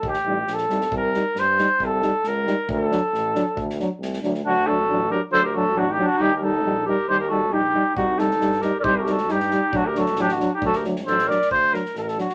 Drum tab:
SD |-o--oooo|--o-o-o-|--o-o-o-|--o-o-o-|
BD |o-------|o-------|o-------|o-------|

SD |-oo-oooo|--------|--------|--------|
BD |o-------|--------|--------|--------|

SD |--------|--ooooo-|--ooooo-|--ooooo-|
BD |--------|o-------|o-------|o-------|

SD |-ooooooo|--oooooo|
BD |o-------|o-------|